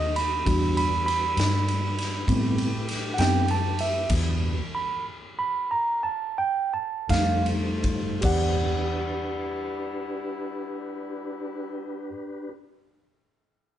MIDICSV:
0, 0, Header, 1, 6, 480
1, 0, Start_track
1, 0, Key_signature, 1, "minor"
1, 0, Tempo, 606673
1, 360, Time_signature, 12, 3, 24, 8
1, 3241, Tempo, 636267
1, 4201, Tempo, 681044
1, 5161, Tempo, 748130
1, 6121, Tempo, 790514
1, 9495, End_track
2, 0, Start_track
2, 0, Title_t, "Tine electric piano"
2, 0, Program_c, 0, 4
2, 0, Note_on_c, 0, 75, 86
2, 111, Note_off_c, 0, 75, 0
2, 128, Note_on_c, 0, 83, 87
2, 362, Note_on_c, 0, 55, 49
2, 365, Note_on_c, 0, 62, 48
2, 371, Note_on_c, 0, 66, 57
2, 588, Note_off_c, 0, 83, 0
2, 611, Note_on_c, 0, 83, 90
2, 679, Note_off_c, 0, 55, 0
2, 681, Note_off_c, 0, 62, 0
2, 684, Note_off_c, 0, 66, 0
2, 831, Note_off_c, 0, 83, 0
2, 841, Note_on_c, 0, 83, 93
2, 1798, Note_on_c, 0, 55, 47
2, 1807, Note_on_c, 0, 59, 42
2, 1808, Note_on_c, 0, 60, 52
2, 2115, Note_off_c, 0, 55, 0
2, 2119, Note_off_c, 0, 59, 0
2, 2120, Note_off_c, 0, 60, 0
2, 2243, Note_off_c, 0, 83, 0
2, 2484, Note_on_c, 0, 78, 72
2, 2513, Note_off_c, 0, 78, 0
2, 2514, Note_on_c, 0, 67, 46
2, 2517, Note_on_c, 0, 59, 42
2, 2519, Note_on_c, 0, 60, 51
2, 2525, Note_on_c, 0, 79, 104
2, 2730, Note_off_c, 0, 67, 0
2, 2732, Note_off_c, 0, 59, 0
2, 2733, Note_off_c, 0, 60, 0
2, 2753, Note_off_c, 0, 79, 0
2, 2776, Note_on_c, 0, 81, 85
2, 3000, Note_off_c, 0, 81, 0
2, 3011, Note_on_c, 0, 76, 84
2, 3241, Note_off_c, 0, 76, 0
2, 3732, Note_on_c, 0, 83, 79
2, 3958, Note_off_c, 0, 83, 0
2, 4214, Note_on_c, 0, 83, 88
2, 4434, Note_off_c, 0, 83, 0
2, 4442, Note_on_c, 0, 82, 82
2, 4669, Note_off_c, 0, 82, 0
2, 4669, Note_on_c, 0, 81, 86
2, 4905, Note_off_c, 0, 81, 0
2, 4915, Note_on_c, 0, 79, 93
2, 5155, Note_off_c, 0, 79, 0
2, 5164, Note_on_c, 0, 81, 77
2, 5387, Note_off_c, 0, 81, 0
2, 5393, Note_on_c, 0, 57, 50
2, 5394, Note_on_c, 0, 55, 53
2, 5397, Note_on_c, 0, 63, 55
2, 5400, Note_on_c, 0, 77, 102
2, 5626, Note_off_c, 0, 77, 0
2, 6096, Note_off_c, 0, 55, 0
2, 6096, Note_off_c, 0, 57, 0
2, 6098, Note_off_c, 0, 63, 0
2, 6112, Note_on_c, 0, 67, 71
2, 6125, Note_on_c, 0, 74, 60
2, 6136, Note_on_c, 0, 78, 78
2, 8464, Note_off_c, 0, 67, 0
2, 8477, Note_off_c, 0, 74, 0
2, 8488, Note_off_c, 0, 78, 0
2, 9495, End_track
3, 0, Start_track
3, 0, Title_t, "Tonewheel organ"
3, 0, Program_c, 1, 16
3, 0, Note_on_c, 1, 60, 70
3, 0, Note_on_c, 1, 63, 75
3, 0, Note_on_c, 1, 66, 71
3, 0, Note_on_c, 1, 69, 73
3, 317, Note_off_c, 1, 69, 0
3, 318, Note_off_c, 1, 66, 0
3, 319, Note_off_c, 1, 60, 0
3, 319, Note_off_c, 1, 63, 0
3, 339, Note_on_c, 1, 62, 76
3, 348, Note_on_c, 1, 55, 78
3, 349, Note_on_c, 1, 71, 72
3, 350, Note_on_c, 1, 66, 69
3, 1770, Note_off_c, 1, 62, 0
3, 1775, Note_off_c, 1, 55, 0
3, 1775, Note_off_c, 1, 71, 0
3, 1776, Note_off_c, 1, 66, 0
3, 1793, Note_on_c, 1, 57, 75
3, 1793, Note_on_c, 1, 71, 72
3, 1795, Note_on_c, 1, 67, 77
3, 1796, Note_on_c, 1, 64, 73
3, 3225, Note_off_c, 1, 57, 0
3, 3225, Note_off_c, 1, 71, 0
3, 3226, Note_off_c, 1, 67, 0
3, 3227, Note_off_c, 1, 64, 0
3, 3251, Note_on_c, 1, 66, 73
3, 3252, Note_on_c, 1, 71, 73
3, 3254, Note_on_c, 1, 62, 72
3, 3261, Note_on_c, 1, 67, 77
3, 3620, Note_off_c, 1, 66, 0
3, 3621, Note_off_c, 1, 71, 0
3, 3622, Note_off_c, 1, 62, 0
3, 3625, Note_off_c, 1, 67, 0
3, 5385, Note_on_c, 1, 69, 63
3, 5388, Note_on_c, 1, 63, 64
3, 5395, Note_on_c, 1, 67, 65
3, 5395, Note_on_c, 1, 72, 69
3, 6110, Note_off_c, 1, 69, 0
3, 6112, Note_off_c, 1, 63, 0
3, 6112, Note_off_c, 1, 67, 0
3, 6112, Note_off_c, 1, 72, 0
3, 6117, Note_on_c, 1, 62, 67
3, 6117, Note_on_c, 1, 71, 61
3, 6120, Note_on_c, 1, 67, 68
3, 6120, Note_on_c, 1, 72, 66
3, 6350, Note_off_c, 1, 62, 0
3, 6351, Note_off_c, 1, 67, 0
3, 6357, Note_off_c, 1, 71, 0
3, 6357, Note_on_c, 1, 62, 74
3, 6359, Note_on_c, 1, 67, 70
3, 6360, Note_off_c, 1, 72, 0
3, 6364, Note_on_c, 1, 71, 72
3, 8709, Note_off_c, 1, 62, 0
3, 8711, Note_off_c, 1, 67, 0
3, 8716, Note_off_c, 1, 71, 0
3, 9495, End_track
4, 0, Start_track
4, 0, Title_t, "Horn section"
4, 0, Program_c, 2, 61
4, 0, Note_on_c, 2, 57, 74
4, 0, Note_on_c, 2, 60, 61
4, 0, Note_on_c, 2, 63, 75
4, 333, Note_off_c, 2, 63, 0
4, 334, Note_off_c, 2, 60, 0
4, 335, Note_off_c, 2, 57, 0
4, 363, Note_on_c, 2, 55, 77
4, 364, Note_on_c, 2, 64, 83
4, 365, Note_on_c, 2, 62, 62
4, 1782, Note_off_c, 2, 55, 0
4, 1783, Note_off_c, 2, 62, 0
4, 1783, Note_off_c, 2, 64, 0
4, 1814, Note_on_c, 2, 67, 80
4, 1816, Note_on_c, 2, 64, 64
4, 1823, Note_on_c, 2, 57, 76
4, 3236, Note_off_c, 2, 67, 0
4, 3237, Note_off_c, 2, 64, 0
4, 3241, Note_off_c, 2, 57, 0
4, 3260, Note_on_c, 2, 62, 61
4, 3260, Note_on_c, 2, 64, 77
4, 3264, Note_on_c, 2, 55, 70
4, 3625, Note_off_c, 2, 62, 0
4, 3625, Note_off_c, 2, 64, 0
4, 3627, Note_off_c, 2, 55, 0
4, 5409, Note_on_c, 2, 57, 69
4, 5413, Note_on_c, 2, 63, 64
4, 5414, Note_on_c, 2, 65, 75
4, 6123, Note_off_c, 2, 57, 0
4, 6123, Note_on_c, 2, 64, 84
4, 6124, Note_off_c, 2, 63, 0
4, 6125, Note_off_c, 2, 65, 0
4, 6125, Note_on_c, 2, 62, 68
4, 6135, Note_on_c, 2, 55, 70
4, 8474, Note_off_c, 2, 64, 0
4, 8477, Note_off_c, 2, 62, 0
4, 8486, Note_off_c, 2, 55, 0
4, 9495, End_track
5, 0, Start_track
5, 0, Title_t, "Fingered electric bass"
5, 0, Program_c, 3, 33
5, 0, Note_on_c, 3, 39, 97
5, 340, Note_off_c, 3, 39, 0
5, 367, Note_on_c, 3, 40, 94
5, 1059, Note_off_c, 3, 40, 0
5, 1083, Note_on_c, 3, 43, 95
5, 1776, Note_off_c, 3, 43, 0
5, 1805, Note_on_c, 3, 45, 99
5, 2497, Note_off_c, 3, 45, 0
5, 2520, Note_on_c, 3, 42, 103
5, 3223, Note_off_c, 3, 42, 0
5, 3241, Note_on_c, 3, 40, 98
5, 3608, Note_off_c, 3, 40, 0
5, 5393, Note_on_c, 3, 41, 94
5, 6100, Note_off_c, 3, 41, 0
5, 6121, Note_on_c, 3, 40, 102
5, 8473, Note_off_c, 3, 40, 0
5, 9495, End_track
6, 0, Start_track
6, 0, Title_t, "Drums"
6, 127, Note_on_c, 9, 51, 68
6, 206, Note_off_c, 9, 51, 0
6, 368, Note_on_c, 9, 36, 116
6, 370, Note_on_c, 9, 51, 95
6, 447, Note_off_c, 9, 36, 0
6, 450, Note_off_c, 9, 51, 0
6, 611, Note_on_c, 9, 51, 68
6, 690, Note_off_c, 9, 51, 0
6, 854, Note_on_c, 9, 51, 63
6, 933, Note_off_c, 9, 51, 0
6, 1086, Note_on_c, 9, 51, 86
6, 1105, Note_on_c, 9, 38, 115
6, 1165, Note_off_c, 9, 51, 0
6, 1185, Note_off_c, 9, 38, 0
6, 1332, Note_on_c, 9, 51, 61
6, 1411, Note_off_c, 9, 51, 0
6, 1570, Note_on_c, 9, 51, 57
6, 1589, Note_on_c, 9, 38, 32
6, 1649, Note_off_c, 9, 51, 0
6, 1669, Note_off_c, 9, 38, 0
6, 1804, Note_on_c, 9, 36, 83
6, 1809, Note_on_c, 9, 51, 82
6, 1883, Note_off_c, 9, 36, 0
6, 1888, Note_off_c, 9, 51, 0
6, 2043, Note_on_c, 9, 51, 62
6, 2122, Note_off_c, 9, 51, 0
6, 2283, Note_on_c, 9, 51, 69
6, 2302, Note_on_c, 9, 38, 34
6, 2362, Note_off_c, 9, 51, 0
6, 2381, Note_off_c, 9, 38, 0
6, 2517, Note_on_c, 9, 51, 87
6, 2537, Note_on_c, 9, 38, 126
6, 2596, Note_off_c, 9, 51, 0
6, 2616, Note_off_c, 9, 38, 0
6, 2755, Note_on_c, 9, 51, 66
6, 2834, Note_off_c, 9, 51, 0
6, 2996, Note_on_c, 9, 51, 69
6, 3075, Note_off_c, 9, 51, 0
6, 3240, Note_on_c, 9, 49, 96
6, 3240, Note_on_c, 9, 51, 101
6, 3243, Note_on_c, 9, 36, 127
6, 3316, Note_off_c, 9, 49, 0
6, 3316, Note_off_c, 9, 51, 0
6, 3318, Note_off_c, 9, 36, 0
6, 5394, Note_on_c, 9, 36, 97
6, 5394, Note_on_c, 9, 51, 88
6, 5410, Note_on_c, 9, 38, 120
6, 5459, Note_off_c, 9, 36, 0
6, 5459, Note_off_c, 9, 51, 0
6, 5475, Note_off_c, 9, 38, 0
6, 5629, Note_on_c, 9, 51, 56
6, 5693, Note_off_c, 9, 51, 0
6, 5870, Note_on_c, 9, 51, 63
6, 5873, Note_on_c, 9, 36, 84
6, 5934, Note_off_c, 9, 51, 0
6, 5937, Note_off_c, 9, 36, 0
6, 6115, Note_on_c, 9, 49, 92
6, 6123, Note_on_c, 9, 36, 123
6, 6177, Note_off_c, 9, 49, 0
6, 6183, Note_off_c, 9, 36, 0
6, 9495, End_track
0, 0, End_of_file